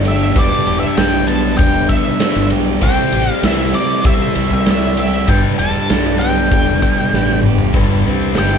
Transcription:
Already playing: G1 G2 D3 G3 B3 D4 G4 A4
0.05 G4 E5, ride
0.34 E1 G2 D3 D4 G4 B4, kick, ride
0.39 G3 D5
0.67 E1 G4, ride
0.80 E5
0.96 B1 D4 G4 B4 G5, snare, ride
1.27 B3 D4 G4 B4 A5, ride
1.57 E1 G3 D4 G4 B4 G5, kick, ride
1.89 B3 E5, kick, ride
2.20 D4 G4 B4, snare, ride
2.36 G1
2.50 B1 G4, ride
2.81 C2 C3 G3 C4 E4 G4 C5 G5, kick, ride
3.12 A1 G4, ride
3.32 F5
3.43 C2 E4 G4 B4 E5, snare, ride
3.74 C4 E4 G4 D5, ride
4.04 C2 G3 E4 G4 C5 E5, kick, ride
4.35 C2 C4, ride
4.51 C2
4.66 E4 G4 D5, snare, ride
4.71 E5
4.97 G4 E5, ride
5.27 G1 G2 D3 G3 D4 G4 B4 G5, kick, ride
5.58 E1 G4 A5, ride
5.90 B1 D4 G4 A4, snare, ride
6.19 B3 D4 G4 B4 G5, ride
6.51 E1 G3 D4 G4 A4, kick, ride
6.82 B3, kick, ride
7.13 A1 D4 G4 B4, snare
7.43 G1 G4, mid tom
7.58 floor tom
7.73 G1 G2 D3 G3 D4 G4 B4, kick, open hi-hat
8.04 C2 C3 G3 C4 D4 G4 B4
8.08 C3 G3 C4
8.34 G1 G2 D3 G3 D4 G4 B4, snare, open hi-hat
8.39 G5

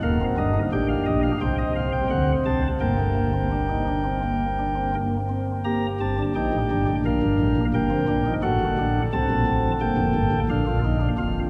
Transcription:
0.03 D#1 D#2 A#3 A#4 F5
0.21 C4
0.38 G1 G2 D4 D#5
0.54 D#4
0.72 A1 A2 D4 G4 G5
0.89 F5
1.06 A#1 A#2 D#5
1.23 F5
1.41 C2 C3 C4 C5 G5
1.58 D#5
1.76 F5
1.92 G5
2.10 D2 D3 F#5
2.46 C2 C3 A5
2.80 G1 G2 A#3 A#4 G5
2.99 A3
3.15 A#3
3.33 C4
3.52 D4
3.69 D#4
3.87 D4
4.04 C4
4.23 A#3
4.59 D4
4.75 C4
4.94 A#3
5.29 C4
5.65 A#3 G4 A#5
6.00 G1 G2 C4 A5
6.18 D4
6.35 A#1 A#2 D#4 G5
6.53 A1 A2
6.71 G1 G2 D4
6.88 A1 A2
7.05 A#1 A#2 A#4 F5
7.22 G1 G2
7.40 A1 A2
7.56 A#1 A#2
7.74 G1 G2 A#3 A#4 G5
7.90 C4
8.08 A#1 A#2 D4
8.26 D#4
8.42 A1 A2 F#4 A4 F#5
8.60 G1 G2
8.78 A1 A2 D4
9.13 C2 C3 C4 A5
9.31 A#1 A#2
9.47 A1 A2
9.81 G1 G2 A#3 G5
9.97 F1 F2
10.15 G1 G2
10.32 A1 A2
10.49 A#1 A#2 D4 F5
10.67 F4
10.84 D#4
11.01 D4
11.18 F1 F2 F4 F5

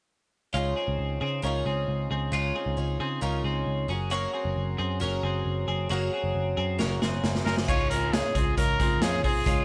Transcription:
0.53 C#2 C#3 G#3 C#4 D#4 F4
0.57 G#4
0.76 C4 G#4
0.88 C#2
0.99 C#2
1.21 C#3 C4 G#4
1.42 C#2 C#3 C#4 D#4 F4 A#4
1.46 G#4
1.66 C#2 C4 G#4
1.88 C#2
2.11 C#2 C4 G#4
2.32 C#2 C#3 G#3 C#4 D#4 F4 G#4
2.55 C4 G#4
2.66 C#2
2.77 C#2 C#4 D#4 F4 G#4
3.00 C#3 C4 G#4
3.21 C#2 C#3 C#4 D#4 F4 G#4 A#4
3.44 C#2 C4 G#4
3.67 C#2
3.88 F#1 C#4 F#4 G#4 A#4
4.10 F#3 A#3 C#4 F#4 G#4 A#4
4.34 C4 G#4
4.45 F#1
4.56 F#1
4.78 F#2 C4 G#4
5.00 F#1 F#3 C#4 F#4 G#4 A#4
5.23 F#1 C4 G#4
5.46 F#1
5.68 F#1 C4 G#4
5.89 F#1 F#3 A#3 C#4 F#4 G#4 A#4
6.13 C4 G#4
6.24 F#1
6.35 F#1
6.57 F#2 C4 G#4
6.79 F#1 F#3 C#4 F#4 G#4 A#4, snare
7.02 F#1 C4 G#4, snare
7.24 F#1, snare
7.35 snare
7.45 F#1 C4 G#4 A#4, snare
7.57 snare
7.68 C#2 C#3 G#3 C#4 D#4 F4 G#4 C#5, kick, crash
7.90 C4 D#4 F4 G#4 A#4, closed hi-hat
8.13 C#3 C#4 D#4 F4 G#4, snare, closed hi-hat
8.35 C#2 C4 D#4 F4 G#4, kick, closed hi-hat
8.57 C#2 C#4 D#4 F4 G#4 A#4, kick, closed hi-hat
8.79 C#2 C4 D#4 F4 G#4, kick, closed hi-hat
9.02 F2 C#3 C#4 D#4 F4 G#4, snare, closed hi-hat
9.24 C2 C4 D#4 F4 G#4, kick, open hi-hat
9.46 C#2 C#3 G#3 C#4 D#4 F4 G#4, kick, closed hi-hat

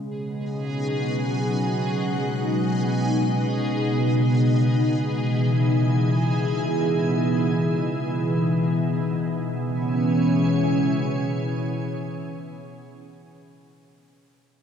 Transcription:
Already playing: B2 C#3 G#3 G#4 G#5
0.10 D#4
0.24 F#3
1.10 F#5
4.92 E3 G#4
9.24 B2 C#3 G#3
9.39 E3
9.48 C#4
9.59 G#4

